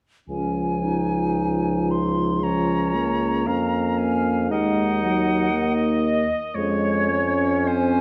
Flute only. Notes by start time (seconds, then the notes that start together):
0.29 G#5
1.91 C6
2.43 A#5
3.98 G#5
4.51 F#5
6.04 D#5
6.54 C#5
7.67 G#5